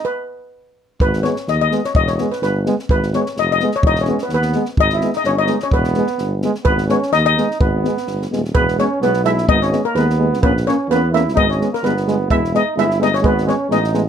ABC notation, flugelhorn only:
X:1
M:2/4
L:1/16
Q:"Swing 16ths" 1/4=127
K:G#m
V:1 name="Flugelhorn"
z8 | z8 | z8 | z8 |
D C2 B, B,3 z | D E2 D C D2 C | B,6 z2 | B,2 C2 D D3 |
B,6 z2 | B,2 C2 B,2 E2 | D C2 A, B,4 | B,2 C2 B,2 E2 |
D C2 A, B,4 | E2 D2 E2 D C | B,2 C2 D3 z |]